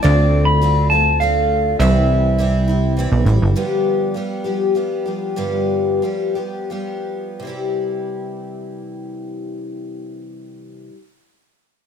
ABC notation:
X:1
M:3/4
L:1/16
Q:1/4=95
K:C
V:1 name="Pedal steel guitar"
d3 b3 a2 f4 | e8 z4 | z12 | z12 |
z12 | z12 |]
V:2 name="Twelve-string acoustic guitar"
[D,A,CF]4 [D,A,CF]2 [A,CF]2 [D,A,CF]4 | [C,E,G,CE]4 [E,G,CE]2 [G,CE]2 [E,G,CE]2 [G,CE]2 | [G,,D,F,G,B,G]4 [F,G,B,G]2 [F,G,B,G]2 [F,G,B,G]2 [F,G,B,G]2 | [G,,D,F,G,B,G]4 [F,G,B,G]2 [F,G,B,G]2 [F,G,B,G]4 |
[C,E,G,EG]12- | [C,E,G,EG]12 |]
V:3 name="Analog synth bass" clef=bass
D,,12 | C,,8- C,, B,,, A,,, G,,, | z12 | z12 |
z12 | z12 |]